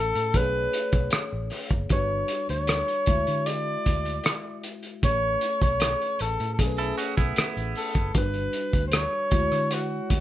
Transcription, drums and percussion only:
0.15 closed hi-hat
0.34 kick, closed hi-hat
0.73 closed hi-hat
0.92 kick, closed hi-hat
1.11 cross-stick, closed hi-hat
1.50 cross-stick, open hi-hat
1.69 kick, closed hi-hat
1.89 kick, closed hi-hat
2.28 closed hi-hat
2.49 closed hi-hat
2.67 cross-stick, closed hi-hat
2.88 closed hi-hat
3.06 kick, closed hi-hat
3.27 closed hi-hat
3.46 closed hi-hat
3.86 kick, closed hi-hat
4.05 closed hi-hat
4.24 cross-stick, closed hi-hat
4.63 closed hi-hat
4.83 closed hi-hat
5.03 kick, closed hi-hat
5.41 closed hi-hat
5.62 kick, closed hi-hat
5.80 cross-stick, closed hi-hat
6.02 closed hi-hat
6.19 closed hi-hat
6.40 closed hi-hat
6.59 kick, closed hi-hat
6.79 closed hi-hat
6.98 closed hi-hat
7.18 kick, closed hi-hat
7.36 cross-stick, closed hi-hat
7.57 closed hi-hat
7.75 open hi-hat
7.94 kick, closed hi-hat
8.14 kick, closed hi-hat
8.34 closed hi-hat
8.53 closed hi-hat
8.73 kick, closed hi-hat
8.92 cross-stick, closed hi-hat
9.31 kick, closed hi-hat
9.52 cross-stick, closed hi-hat
9.71 closed hi-hat
10.10 kick, closed hi-hat

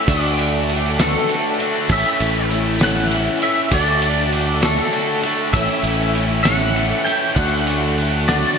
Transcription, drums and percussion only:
0.08 kick, ride, tambourine
0.26 tambourine
0.39 ride
0.56 tambourine
0.69 ride
0.99 snare, ride, tambourine
1.16 tambourine
1.29 ride, tambourine
1.45 tambourine
1.60 ride
1.75 tambourine
1.89 kick, tambourine, crash
2.20 ride
2.50 ride
2.79 snare, ride, tambourine
3.10 ride, tambourine
3.26 tambourine
3.42 ride
3.71 kick, ride, tambourine
4.02 ride
4.33 ride
4.62 snare, ride, tambourine
4.79 tambourine
4.92 ride, tambourine
5.08 tambourine
5.23 ride
5.53 kick, ride, tambourine
5.84 ride
6.15 ride
6.43 snare, ride, tambourine
6.59 tambourine
6.75 ride, tambourine
6.90 tambourine
7.06 ride
7.37 kick, ride, tambourine
7.67 ride
7.97 ride, tambourine
8.28 snare, ride, tambourine

